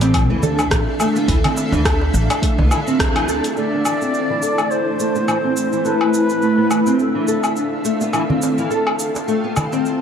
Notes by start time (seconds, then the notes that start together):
Already playing: A1 D4 A4 E5 F5
0.01 C4, open hi-hat, darbuka ka, darbuka tek, cabasa
0.14 kick, open hi-hat, cabasa, low woodblock
0.30 D2 E3
0.43 A4, darbuka dum, cabasa
0.59 darbuka tek, cabasa, low woodblock
0.71 A1, kick, cross-stick, open hi-hat, cabasa
1.00 A3, darbuka ka, cabasa, low woodblock
1.16 B3, cabasa
1.28 D2 E3, kick, open hi-hat, cabasa
1.44 C4, open hi-hat, darbuka dum, low woodblock
1.57 darbuka ka, darbuka tek, cabasa
1.72 D2 E3, darbuka ka, cabasa
1.85 A4, kick, cross-stick, open hi-hat, cabasa, low woodblock
2.02 darbuka tek
2.14 A1, cabasa
2.30 open hi-hat, darbuka ka, darbuka tek, cabasa, low woodblock
2.42 A3, kick, open hi-hat, cabasa
2.58 C2 B3, darbuka tek, darbuka dum
2.71 E3, cabasa, low woodblock
2.87 C4, cabasa
2.99 D2, kick, cross-stick, open hi-hat, cabasa
3.15 E3, open hi-hat, low woodblock
3.28 A4, cabasa
3.44 open hi-hat, cabasa
3.56 A3 E4 C5 D5, cabasa
3.73 B3
3.85 E3, cabasa, low woodblock
4.01 C4, cabasa
4.14 cabasa
4.30 E3
4.42 A4, cabasa
4.58 cabasa, low woodblock
4.70 C5, cabasa
4.99 A3, cabasa
5.15 B3, cabasa
5.28 E3, cabasa, low woodblock
5.44 C4
5.57 cabasa
5.72 E3, cabasa
5.85 D4 A4 B4 E5 F5, cabasa
6.01 low woodblock
6.14 cabasa
6.30 cabasa
6.42 A3, cabasa
6.58 B3
6.71 E3, cabasa, low woodblock
6.86 C4, cabasa
6.99 A4, cabasa
7.15 E3
7.28 A4, cabasa
7.44 cabasa, low woodblock
7.56 cabasa
7.85 A3, cabasa
8.01 B3, cabasa
8.13 E3 F5 G5 A5 C6, cabasa, low woodblock
8.29 C4, darbuka dum
8.42 darbuka tek, cabasa
8.58 E3, darbuka ka, cabasa
8.70 A4, cabasa
8.87 low woodblock
8.99 cabasa
9.15 darbuka ka, darbuka tek, cabasa
9.28 A3, cabasa
9.44 B3
9.56 E3, darbuka dum, cabasa, low woodblock
9.72 C4, darbuka tek, cabasa
9.86 cabasa